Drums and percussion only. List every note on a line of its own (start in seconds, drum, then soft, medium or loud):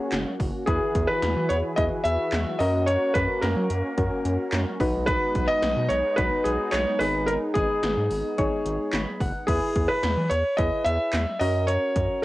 0.12 snare loud
0.12 clap medium
0.12 closed hi-hat medium
0.40 kick medium
0.40 open hi-hat medium
0.67 kick loud
0.67 closed hi-hat medium
0.95 kick loud
0.95 closed hi-hat medium
1.22 snare loud
1.22 closed hi-hat medium
1.50 closed hi-hat medium
1.78 kick medium
1.78 closed hi-hat medium
2.05 closed hi-hat medium
2.32 snare loud
2.32 clap medium
2.32 closed hi-hat medium
2.60 open hi-hat medium
2.88 closed hi-hat medium
3.15 kick loud
3.15 closed hi-hat medium
3.42 snare loud
3.42 closed hi-hat medium
3.70 closed hi-hat medium
3.98 kick loud
3.98 closed hi-hat medium
4.25 closed hi-hat medium
4.53 snare loud
4.53 clap medium
4.53 closed hi-hat medium
4.80 kick loud
4.80 open hi-hat medium
5.08 kick loud
5.08 closed hi-hat medium
5.35 kick loud
5.35 closed hi-hat medium
5.63 snare loud
5.63 closed hi-hat medium
5.90 closed hi-hat medium
6.18 kick loud
6.18 closed hi-hat medium
6.45 closed hi-hat medium
6.73 snare loud
6.73 clap loud
6.73 closed hi-hat medium
7.01 open hi-hat medium
7.28 closed hi-hat medium
7.55 kick loud
7.55 closed hi-hat medium
7.83 snare loud
7.83 closed hi-hat medium
8.10 open hi-hat medium
8.38 kick loud
8.38 closed hi-hat medium
8.66 closed hi-hat medium
8.93 snare loud
8.93 clap medium
8.93 closed hi-hat medium
9.20 kick medium
9.20 open hi-hat medium
9.48 kick loud
9.48 closed hi-hat medium
9.48 crash loud
9.76 kick loud
9.76 closed hi-hat medium
10.03 snare loud
10.03 closed hi-hat medium
10.31 closed hi-hat medium
10.58 kick loud
10.58 closed hi-hat medium
10.86 closed hi-hat medium
11.13 snare loud
11.13 clap loud
11.13 closed hi-hat medium
11.41 open hi-hat medium
11.68 closed hi-hat medium
11.96 kick loud
11.96 closed hi-hat loud